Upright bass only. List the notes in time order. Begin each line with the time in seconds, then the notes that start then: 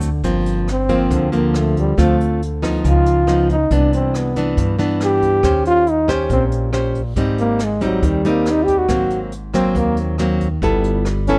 Already playing: D2
0.24 G1
1.11 D2
1.98 D2
2.85 C#2
3.71 C2
4.57 G2
5.43 D#2
6.30 A#1
7.16 G#1
8.03 D#2
8.89 G#1
9.75 D#2
10.62 G1